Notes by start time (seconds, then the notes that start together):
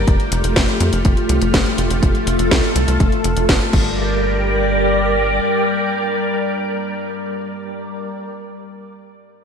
Already playing: G4
0.07 F1 A3 F4, kick, closed hi-hat
0.20 closed hi-hat
0.32 F1, closed hi-hat
0.44 F1, closed hi-hat
0.56 F1, kick, snare, closed hi-hat
0.68 closed hi-hat
0.80 F2, closed hi-hat
0.93 F1, closed hi-hat
1.05 F1, kick, closed hi-hat
1.17 closed hi-hat
1.29 C2, closed hi-hat
1.42 F1, closed hi-hat
1.54 F1, kick, snare, closed hi-hat
1.66 closed hi-hat
1.78 F1, closed hi-hat
1.90 F1, closed hi-hat
2.02 F1 A4, kick, closed hi-hat
2.15 closed hi-hat
2.27 F1, closed hi-hat
2.39 F1, closed hi-hat
2.51 C2, kick, snare, closed hi-hat
2.64 closed hi-hat
2.76 C2, closed hi-hat
2.88 C2, closed hi-hat
3.00 F1, kick, closed hi-hat
3.12 closed hi-hat
3.24 F1, closed hi-hat
3.37 F1, closed hi-hat
3.49 F1, kick, snare, closed hi-hat
3.61 closed hi-hat
3.73 G1 G3 G4 A#4 D5, kick, crash